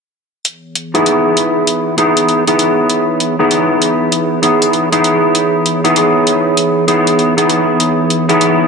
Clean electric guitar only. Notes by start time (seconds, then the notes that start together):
0.94 B3 D#4 E4 G#4
1.98 B3 D#4 E4 G#4
2.47 B3 D#4 E4 G#4
3.39 B3 D#4 E4 G#4
4.42 B3 D#4 E4 G#4
4.92 B3 D#4 E4 G#4
5.84 B3 D#4 E4 G#4
6.88 B3 D#4 E4 G#4
7.37 B3 D#4 E4 G#4
8.29 B3 D#4 E4 G#4